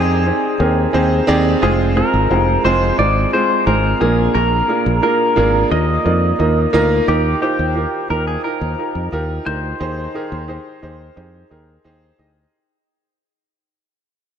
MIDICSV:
0, 0, Header, 1, 4, 480
1, 0, Start_track
1, 0, Key_signature, -3, "major"
1, 0, Tempo, 681818
1, 1142, Time_signature, 4, 2, 24, 8
1, 10126, End_track
2, 0, Start_track
2, 0, Title_t, "Clean electric guitar"
2, 0, Program_c, 0, 27
2, 0, Note_on_c, 0, 68, 80
2, 876, Note_off_c, 0, 68, 0
2, 1147, Note_on_c, 0, 68, 91
2, 1211, Note_off_c, 0, 68, 0
2, 1386, Note_on_c, 0, 70, 89
2, 1862, Note_off_c, 0, 70, 0
2, 1864, Note_on_c, 0, 72, 88
2, 2101, Note_off_c, 0, 72, 0
2, 2104, Note_on_c, 0, 74, 108
2, 2344, Note_off_c, 0, 74, 0
2, 2347, Note_on_c, 0, 72, 95
2, 2580, Note_off_c, 0, 72, 0
2, 2582, Note_on_c, 0, 70, 93
2, 2821, Note_on_c, 0, 68, 90
2, 2829, Note_off_c, 0, 70, 0
2, 3045, Note_off_c, 0, 68, 0
2, 3059, Note_on_c, 0, 70, 102
2, 3534, Note_off_c, 0, 70, 0
2, 3542, Note_on_c, 0, 70, 94
2, 4021, Note_off_c, 0, 70, 0
2, 4024, Note_on_c, 0, 75, 105
2, 4715, Note_off_c, 0, 75, 0
2, 4987, Note_on_c, 0, 67, 85
2, 5216, Note_off_c, 0, 67, 0
2, 5225, Note_on_c, 0, 67, 78
2, 5702, Note_off_c, 0, 67, 0
2, 5705, Note_on_c, 0, 70, 86
2, 5822, Note_off_c, 0, 70, 0
2, 5825, Note_on_c, 0, 68, 91
2, 5941, Note_off_c, 0, 68, 0
2, 5943, Note_on_c, 0, 70, 91
2, 6395, Note_off_c, 0, 70, 0
2, 6662, Note_on_c, 0, 72, 100
2, 8314, Note_off_c, 0, 72, 0
2, 10126, End_track
3, 0, Start_track
3, 0, Title_t, "Grand piano"
3, 0, Program_c, 1, 0
3, 0, Control_c, 1, 64, 127
3, 0, Note_on_c, 1, 51, 64
3, 0, Note_on_c, 1, 60, 100
3, 0, Note_on_c, 1, 63, 88
3, 0, Note_on_c, 1, 67, 91
3, 0, Note_on_c, 1, 68, 89
3, 0, Note_on_c, 1, 72, 111
3, 0, Note_on_c, 1, 74, 84
3, 130, Note_off_c, 1, 60, 0
3, 132, Note_off_c, 1, 63, 0
3, 133, Note_off_c, 1, 67, 0
3, 134, Note_off_c, 1, 68, 0
3, 135, Note_off_c, 1, 72, 0
3, 179, Note_on_c, 1, 60, 75
3, 182, Note_on_c, 1, 63, 64
3, 185, Note_on_c, 1, 67, 61
3, 186, Note_on_c, 1, 68, 61
3, 188, Note_on_c, 1, 72, 75
3, 370, Note_off_c, 1, 60, 0
3, 372, Note_off_c, 1, 63, 0
3, 373, Note_off_c, 1, 67, 0
3, 374, Note_off_c, 1, 68, 0
3, 375, Note_off_c, 1, 72, 0
3, 417, Note_on_c, 1, 60, 77
3, 420, Note_on_c, 1, 63, 73
3, 422, Note_on_c, 1, 67, 71
3, 423, Note_on_c, 1, 68, 72
3, 426, Note_on_c, 1, 70, 78
3, 609, Note_off_c, 1, 60, 0
3, 610, Note_off_c, 1, 63, 0
3, 611, Note_off_c, 1, 67, 0
3, 612, Note_off_c, 1, 68, 0
3, 613, Note_off_c, 1, 70, 0
3, 655, Note_on_c, 1, 60, 95
3, 658, Note_on_c, 1, 63, 83
3, 661, Note_on_c, 1, 67, 84
3, 663, Note_on_c, 1, 68, 84
3, 664, Note_on_c, 1, 72, 101
3, 848, Note_off_c, 1, 60, 0
3, 849, Note_off_c, 1, 63, 0
3, 851, Note_off_c, 1, 67, 0
3, 852, Note_off_c, 1, 68, 0
3, 853, Note_off_c, 1, 72, 0
3, 895, Note_on_c, 1, 60, 120
3, 896, Note_on_c, 1, 63, 102
3, 900, Note_on_c, 1, 67, 106
3, 901, Note_on_c, 1, 68, 109
3, 904, Note_off_c, 1, 74, 0
3, 904, Note_on_c, 1, 74, 126
3, 1088, Note_off_c, 1, 60, 0
3, 1089, Note_off_c, 1, 63, 0
3, 1091, Note_off_c, 1, 67, 0
3, 1091, Note_off_c, 1, 68, 0
3, 1093, Note_off_c, 1, 74, 0
3, 1137, Note_on_c, 1, 56, 91
3, 1139, Note_on_c, 1, 60, 87
3, 1141, Note_on_c, 1, 65, 93
3, 1144, Note_on_c, 1, 68, 94
3, 1146, Note_on_c, 1, 72, 107
3, 1151, Control_c, 1, 64, 0
3, 1152, Note_off_c, 1, 51, 0
3, 1262, Control_c, 1, 64, 127
3, 1329, Note_off_c, 1, 56, 0
3, 1330, Note_off_c, 1, 60, 0
3, 1331, Note_off_c, 1, 65, 0
3, 1333, Note_off_c, 1, 68, 0
3, 1333, Note_off_c, 1, 72, 0
3, 1379, Note_on_c, 1, 56, 71
3, 1381, Note_on_c, 1, 60, 69
3, 1382, Note_on_c, 1, 65, 71
3, 1384, Note_on_c, 1, 68, 68
3, 1387, Note_on_c, 1, 72, 81
3, 1570, Note_off_c, 1, 56, 0
3, 1571, Note_off_c, 1, 60, 0
3, 1572, Note_off_c, 1, 65, 0
3, 1573, Note_off_c, 1, 68, 0
3, 1574, Note_off_c, 1, 72, 0
3, 1617, Note_on_c, 1, 56, 74
3, 1619, Note_on_c, 1, 60, 72
3, 1622, Note_on_c, 1, 65, 71
3, 1624, Note_on_c, 1, 68, 72
3, 1625, Note_on_c, 1, 72, 91
3, 1809, Note_off_c, 1, 56, 0
3, 1810, Note_off_c, 1, 60, 0
3, 1811, Note_off_c, 1, 65, 0
3, 1812, Note_off_c, 1, 68, 0
3, 1813, Note_off_c, 1, 72, 0
3, 1860, Note_on_c, 1, 56, 101
3, 1862, Note_on_c, 1, 60, 90
3, 1863, Note_on_c, 1, 65, 92
3, 1867, Note_on_c, 1, 68, 92
3, 1868, Note_on_c, 1, 72, 114
3, 2050, Note_off_c, 1, 56, 0
3, 2052, Note_off_c, 1, 60, 0
3, 2052, Note_off_c, 1, 65, 0
3, 2054, Note_off_c, 1, 68, 0
3, 2055, Note_off_c, 1, 72, 0
3, 2100, Note_on_c, 1, 56, 69
3, 2101, Note_on_c, 1, 60, 67
3, 2105, Note_on_c, 1, 65, 65
3, 2107, Note_on_c, 1, 68, 64
3, 2109, Note_on_c, 1, 72, 74
3, 2291, Note_off_c, 1, 56, 0
3, 2291, Note_off_c, 1, 60, 0
3, 2293, Note_off_c, 1, 65, 0
3, 2294, Note_off_c, 1, 68, 0
3, 2295, Note_off_c, 1, 72, 0
3, 2342, Note_on_c, 1, 56, 77
3, 2343, Note_on_c, 1, 60, 65
3, 2345, Note_on_c, 1, 65, 70
3, 2348, Note_on_c, 1, 68, 72
3, 2350, Note_on_c, 1, 72, 86
3, 2531, Note_off_c, 1, 56, 0
3, 2532, Note_off_c, 1, 60, 0
3, 2533, Note_off_c, 1, 65, 0
3, 2534, Note_off_c, 1, 68, 0
3, 2536, Note_off_c, 1, 72, 0
3, 2577, Note_on_c, 1, 56, 76
3, 2580, Note_on_c, 1, 60, 71
3, 2582, Note_on_c, 1, 65, 70
3, 2584, Note_on_c, 1, 68, 68
3, 2586, Note_on_c, 1, 72, 81
3, 2769, Note_off_c, 1, 56, 0
3, 2770, Note_off_c, 1, 60, 0
3, 2772, Note_off_c, 1, 65, 0
3, 2773, Note_off_c, 1, 68, 0
3, 2774, Note_off_c, 1, 72, 0
3, 2816, Note_on_c, 1, 58, 83
3, 2818, Note_on_c, 1, 62, 72
3, 2820, Note_on_c, 1, 46, 68
3, 2820, Note_on_c, 1, 65, 74
3, 2822, Note_on_c, 1, 68, 72
3, 2824, Note_on_c, 1, 70, 93
3, 2830, Control_c, 1, 64, 0
3, 2958, Control_c, 1, 64, 127
3, 3203, Note_off_c, 1, 58, 0
3, 3204, Note_off_c, 1, 62, 0
3, 3205, Note_off_c, 1, 65, 0
3, 3206, Note_off_c, 1, 68, 0
3, 3207, Note_off_c, 1, 70, 0
3, 3296, Note_on_c, 1, 58, 71
3, 3299, Note_on_c, 1, 62, 67
3, 3301, Note_on_c, 1, 65, 68
3, 3303, Note_on_c, 1, 68, 66
3, 3304, Note_on_c, 1, 70, 81
3, 3489, Note_off_c, 1, 58, 0
3, 3490, Note_off_c, 1, 62, 0
3, 3491, Note_off_c, 1, 65, 0
3, 3492, Note_off_c, 1, 68, 0
3, 3493, Note_off_c, 1, 70, 0
3, 3513, Note_off_c, 1, 46, 0
3, 3535, Note_on_c, 1, 58, 78
3, 3538, Note_on_c, 1, 62, 69
3, 3538, Note_on_c, 1, 65, 72
3, 3541, Note_on_c, 1, 68, 69
3, 3542, Note_on_c, 1, 70, 84
3, 3728, Note_off_c, 1, 58, 0
3, 3729, Note_off_c, 1, 62, 0
3, 3730, Note_off_c, 1, 65, 0
3, 3731, Note_off_c, 1, 68, 0
3, 3732, Note_off_c, 1, 70, 0
3, 3773, Note_on_c, 1, 58, 99
3, 3776, Note_on_c, 1, 62, 92
3, 3779, Note_on_c, 1, 65, 88
3, 3780, Note_on_c, 1, 68, 86
3, 3782, Note_on_c, 1, 70, 103
3, 3967, Note_off_c, 1, 58, 0
3, 3969, Note_off_c, 1, 62, 0
3, 3970, Note_off_c, 1, 65, 0
3, 3971, Note_off_c, 1, 68, 0
3, 3972, Note_off_c, 1, 70, 0
3, 4014, Note_on_c, 1, 58, 70
3, 4016, Note_on_c, 1, 63, 63
3, 4018, Note_on_c, 1, 51, 58
3, 4018, Note_on_c, 1, 65, 63
3, 4020, Note_on_c, 1, 70, 68
3, 4023, Note_on_c, 1, 75, 78
3, 4031, Control_c, 1, 64, 0
3, 4154, Control_c, 1, 64, 127
3, 4208, Note_off_c, 1, 58, 0
3, 4209, Note_off_c, 1, 63, 0
3, 4210, Note_off_c, 1, 65, 0
3, 4211, Note_off_c, 1, 70, 0
3, 4212, Note_off_c, 1, 75, 0
3, 4255, Note_on_c, 1, 58, 72
3, 4258, Note_on_c, 1, 63, 68
3, 4260, Note_on_c, 1, 65, 67
3, 4262, Note_on_c, 1, 70, 71
3, 4263, Note_on_c, 1, 74, 78
3, 4448, Note_off_c, 1, 58, 0
3, 4450, Note_off_c, 1, 63, 0
3, 4451, Note_off_c, 1, 65, 0
3, 4451, Note_off_c, 1, 70, 0
3, 4452, Note_off_c, 1, 74, 0
3, 4497, Note_on_c, 1, 58, 76
3, 4498, Note_on_c, 1, 63, 68
3, 4500, Note_on_c, 1, 65, 65
3, 4502, Note_on_c, 1, 70, 68
3, 4505, Note_on_c, 1, 75, 83
3, 4689, Note_off_c, 1, 58, 0
3, 4690, Note_off_c, 1, 63, 0
3, 4690, Note_off_c, 1, 65, 0
3, 4692, Note_off_c, 1, 70, 0
3, 4693, Note_off_c, 1, 75, 0
3, 4712, Note_off_c, 1, 51, 0
3, 4738, Note_on_c, 1, 58, 114
3, 4740, Note_on_c, 1, 63, 107
3, 4743, Note_on_c, 1, 65, 106
3, 4745, Note_on_c, 1, 70, 111
3, 4747, Note_on_c, 1, 75, 120
3, 4930, Note_off_c, 1, 58, 0
3, 4931, Note_off_c, 1, 63, 0
3, 4932, Note_off_c, 1, 65, 0
3, 4933, Note_off_c, 1, 70, 0
3, 4934, Note_off_c, 1, 75, 0
3, 4977, Note_on_c, 1, 63, 92
3, 4981, Note_on_c, 1, 65, 78
3, 4982, Note_on_c, 1, 51, 59
3, 4984, Note_on_c, 1, 67, 82
3, 4987, Note_on_c, 1, 70, 95
3, 4993, Control_c, 1, 64, 0
3, 5125, Control_c, 1, 64, 127
3, 5169, Note_off_c, 1, 63, 0
3, 5171, Note_off_c, 1, 65, 0
3, 5173, Note_off_c, 1, 67, 0
3, 5174, Note_off_c, 1, 70, 0
3, 5217, Note_on_c, 1, 63, 87
3, 5220, Note_on_c, 1, 65, 76
3, 5222, Note_on_c, 1, 67, 81
3, 5226, Note_on_c, 1, 72, 90
3, 5409, Note_off_c, 1, 63, 0
3, 5411, Note_off_c, 1, 65, 0
3, 5412, Note_off_c, 1, 67, 0
3, 5414, Note_off_c, 1, 72, 0
3, 5459, Note_on_c, 1, 63, 69
3, 5461, Note_on_c, 1, 65, 63
3, 5465, Note_on_c, 1, 67, 65
3, 5467, Note_on_c, 1, 70, 79
3, 5650, Note_off_c, 1, 63, 0
3, 5651, Note_off_c, 1, 65, 0
3, 5653, Note_off_c, 1, 67, 0
3, 5654, Note_off_c, 1, 70, 0
3, 5674, Note_off_c, 1, 51, 0
3, 5701, Note_on_c, 1, 63, 68
3, 5704, Note_on_c, 1, 65, 64
3, 5707, Note_on_c, 1, 67, 64
3, 5710, Note_on_c, 1, 70, 77
3, 5891, Note_off_c, 1, 63, 0
3, 5893, Note_off_c, 1, 65, 0
3, 5894, Note_off_c, 1, 67, 0
3, 5896, Note_off_c, 1, 70, 0
3, 5943, Note_on_c, 1, 63, 64
3, 5947, Note_on_c, 1, 65, 57
3, 5949, Note_on_c, 1, 67, 58
3, 5951, Note_on_c, 1, 70, 67
3, 6132, Note_off_c, 1, 63, 0
3, 6134, Note_off_c, 1, 65, 0
3, 6135, Note_off_c, 1, 67, 0
3, 6136, Note_off_c, 1, 70, 0
3, 6182, Note_on_c, 1, 63, 69
3, 6186, Note_on_c, 1, 65, 62
3, 6188, Note_on_c, 1, 67, 64
3, 6191, Note_on_c, 1, 70, 75
3, 6371, Note_off_c, 1, 63, 0
3, 6374, Note_off_c, 1, 65, 0
3, 6375, Note_off_c, 1, 67, 0
3, 6376, Note_off_c, 1, 70, 0
3, 6421, Note_on_c, 1, 63, 81
3, 6422, Note_on_c, 1, 65, 77
3, 6425, Note_on_c, 1, 67, 77
3, 6428, Note_on_c, 1, 70, 96
3, 6611, Note_off_c, 1, 63, 0
3, 6612, Note_off_c, 1, 65, 0
3, 6613, Note_off_c, 1, 67, 0
3, 6615, Note_off_c, 1, 70, 0
3, 6660, Note_on_c, 1, 63, 66
3, 6663, Note_on_c, 1, 65, 60
3, 6666, Note_on_c, 1, 67, 62
3, 6669, Note_on_c, 1, 70, 75
3, 6850, Note_off_c, 1, 63, 0
3, 6852, Note_off_c, 1, 65, 0
3, 6853, Note_off_c, 1, 67, 0
3, 6855, Note_off_c, 1, 70, 0
3, 6899, Note_on_c, 1, 63, 88
3, 6902, Note_on_c, 1, 67, 82
3, 6904, Note_on_c, 1, 51, 56
3, 6905, Note_on_c, 1, 68, 80
3, 6908, Note_on_c, 1, 72, 96
3, 6911, Control_c, 1, 64, 0
3, 7040, Control_c, 1, 64, 127
3, 7090, Note_off_c, 1, 63, 0
3, 7091, Note_off_c, 1, 67, 0
3, 7093, Note_off_c, 1, 68, 0
3, 7095, Note_off_c, 1, 72, 0
3, 7141, Note_on_c, 1, 63, 84
3, 7143, Note_on_c, 1, 67, 79
3, 7146, Note_on_c, 1, 68, 82
3, 7149, Note_on_c, 1, 70, 95
3, 7331, Note_off_c, 1, 63, 0
3, 7332, Note_off_c, 1, 67, 0
3, 7334, Note_off_c, 1, 68, 0
3, 7335, Note_off_c, 1, 70, 0
3, 7377, Note_on_c, 1, 63, 82
3, 7380, Note_on_c, 1, 67, 74
3, 7383, Note_on_c, 1, 68, 72
3, 7387, Note_on_c, 1, 72, 89
3, 7569, Note_off_c, 1, 63, 0
3, 7571, Note_off_c, 1, 67, 0
3, 7572, Note_off_c, 1, 68, 0
3, 7574, Note_off_c, 1, 72, 0
3, 7595, Note_off_c, 1, 51, 0
3, 7618, Note_on_c, 1, 63, 84
3, 7620, Note_on_c, 1, 67, 71
3, 7623, Note_on_c, 1, 68, 70
3, 7627, Note_on_c, 1, 72, 86
3, 7810, Note_off_c, 1, 63, 0
3, 7811, Note_off_c, 1, 67, 0
3, 7812, Note_off_c, 1, 68, 0
3, 7814, Note_off_c, 1, 72, 0
3, 7856, Note_on_c, 1, 63, 75
3, 7858, Note_on_c, 1, 67, 67
3, 7862, Note_on_c, 1, 68, 67
3, 7864, Note_on_c, 1, 72, 77
3, 8049, Note_off_c, 1, 63, 0
3, 8050, Note_off_c, 1, 67, 0
3, 8051, Note_off_c, 1, 68, 0
3, 8053, Note_off_c, 1, 72, 0
3, 8097, Note_on_c, 1, 63, 75
3, 8101, Note_on_c, 1, 67, 67
3, 8103, Note_on_c, 1, 68, 68
3, 8106, Note_on_c, 1, 70, 83
3, 8289, Note_off_c, 1, 63, 0
3, 8291, Note_off_c, 1, 67, 0
3, 8292, Note_off_c, 1, 68, 0
3, 8294, Note_off_c, 1, 70, 0
3, 8338, Note_on_c, 1, 63, 99
3, 8339, Note_on_c, 1, 67, 86
3, 8343, Note_on_c, 1, 68, 90
3, 8346, Note_on_c, 1, 72, 104
3, 8530, Note_off_c, 1, 63, 0
3, 8530, Note_off_c, 1, 67, 0
3, 8532, Note_off_c, 1, 68, 0
3, 8533, Note_off_c, 1, 72, 0
3, 8576, Note_on_c, 1, 63, 80
3, 8580, Note_on_c, 1, 67, 67
3, 8582, Note_on_c, 1, 68, 71
3, 8585, Note_on_c, 1, 75, 85
3, 8769, Note_off_c, 1, 63, 0
3, 8771, Note_off_c, 1, 67, 0
3, 8772, Note_off_c, 1, 68, 0
3, 8773, Note_off_c, 1, 75, 0
3, 8830, Control_c, 1, 64, 0
3, 10126, End_track
4, 0, Start_track
4, 0, Title_t, "Fingered electric bass"
4, 0, Program_c, 2, 33
4, 0, Note_on_c, 2, 41, 89
4, 214, Note_off_c, 2, 41, 0
4, 422, Note_on_c, 2, 39, 105
4, 602, Note_off_c, 2, 39, 0
4, 664, Note_on_c, 2, 39, 103
4, 843, Note_off_c, 2, 39, 0
4, 905, Note_on_c, 2, 39, 88
4, 1084, Note_off_c, 2, 39, 0
4, 1145, Note_on_c, 2, 29, 112
4, 1414, Note_off_c, 2, 29, 0
4, 1504, Note_on_c, 2, 32, 85
4, 1593, Note_off_c, 2, 32, 0
4, 1624, Note_on_c, 2, 29, 91
4, 1803, Note_off_c, 2, 29, 0
4, 1863, Note_on_c, 2, 29, 94
4, 2043, Note_off_c, 2, 29, 0
4, 2102, Note_on_c, 2, 32, 94
4, 2282, Note_off_c, 2, 32, 0
4, 2583, Note_on_c, 2, 32, 102
4, 2762, Note_off_c, 2, 32, 0
4, 2825, Note_on_c, 2, 34, 101
4, 3004, Note_off_c, 2, 34, 0
4, 3063, Note_on_c, 2, 34, 105
4, 3243, Note_off_c, 2, 34, 0
4, 3423, Note_on_c, 2, 34, 100
4, 3513, Note_off_c, 2, 34, 0
4, 3783, Note_on_c, 2, 32, 89
4, 3962, Note_off_c, 2, 32, 0
4, 4022, Note_on_c, 2, 39, 97
4, 4202, Note_off_c, 2, 39, 0
4, 4263, Note_on_c, 2, 41, 88
4, 4443, Note_off_c, 2, 41, 0
4, 4503, Note_on_c, 2, 39, 96
4, 4682, Note_off_c, 2, 39, 0
4, 4745, Note_on_c, 2, 38, 91
4, 4924, Note_off_c, 2, 38, 0
4, 4985, Note_on_c, 2, 39, 99
4, 5164, Note_off_c, 2, 39, 0
4, 5344, Note_on_c, 2, 39, 81
4, 5523, Note_off_c, 2, 39, 0
4, 5704, Note_on_c, 2, 39, 84
4, 5883, Note_off_c, 2, 39, 0
4, 6064, Note_on_c, 2, 39, 85
4, 6153, Note_off_c, 2, 39, 0
4, 6302, Note_on_c, 2, 41, 79
4, 6392, Note_off_c, 2, 41, 0
4, 6423, Note_on_c, 2, 39, 82
4, 6603, Note_off_c, 2, 39, 0
4, 6664, Note_on_c, 2, 38, 83
4, 6843, Note_off_c, 2, 38, 0
4, 6903, Note_on_c, 2, 39, 101
4, 7083, Note_off_c, 2, 39, 0
4, 7265, Note_on_c, 2, 39, 91
4, 7444, Note_off_c, 2, 39, 0
4, 7623, Note_on_c, 2, 39, 77
4, 7803, Note_off_c, 2, 39, 0
4, 7864, Note_on_c, 2, 41, 87
4, 8043, Note_off_c, 2, 41, 0
4, 8104, Note_on_c, 2, 39, 79
4, 8283, Note_off_c, 2, 39, 0
4, 8343, Note_on_c, 2, 39, 76
4, 8522, Note_off_c, 2, 39, 0
4, 8583, Note_on_c, 2, 38, 77
4, 8762, Note_off_c, 2, 38, 0
4, 10126, End_track
0, 0, End_of_file